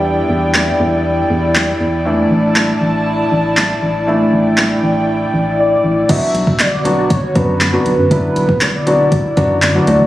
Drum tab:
CC |----------------|----------------|----------------|x---------------|
HH |----------------|----------------|----------------|x-x-x-x-x-x-x-x-|
CP |----x-------x---|----x-------x---|----x-----------|----x-------x---|
SD |----o-------o---|----o-------o---|----o-----------|----o-------o---|
BD |----------------|----------------|----------------|o--o----o-o-----|

CC |----------------|
HH |x-x-x-x-x-x-x-x-|
CP |----x-------x---|
SD |----o-------o---|
BD |o--o----o-o-----|